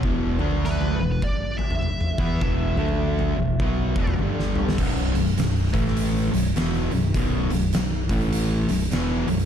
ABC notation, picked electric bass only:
X:1
M:4/4
L:1/8
Q:"Swing" 1/4=101
K:Bm
V:1 name="Picked electric bass" clef=bass
E,,, D,,2 E,,, z3 E,, | E,,, D,,2 E,,, B,,, E,,, G,,,2 | B,,,, B,,,, B,,,, A,,,2 B,,,, E,,, B,,,, | B,,,, B,,,, B,,,, A,,,2 B,,,, E,,, B,,,, |]